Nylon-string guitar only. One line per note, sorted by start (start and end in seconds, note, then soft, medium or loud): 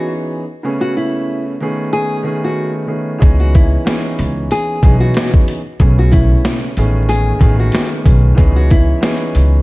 0.00 0.13 F#4 medium
0.81 0.94 F#4 medium
0.97 1.43 E4 medium
1.93 2.40 G#4 medium
2.44 2.73 F#4 medium
3.40 3.53 F#4 medium
3.55 4.02 E4 medium
4.52 4.98 G#4 medium
5.00 5.30 F#4 medium
5.99 6.11 F#4 medium
6.11 6.59 E4 medium
7.09 7.56 G#4 medium
7.60 7.88 F#4 medium
8.56 8.69 F#4 medium
8.71 9.18 E4 medium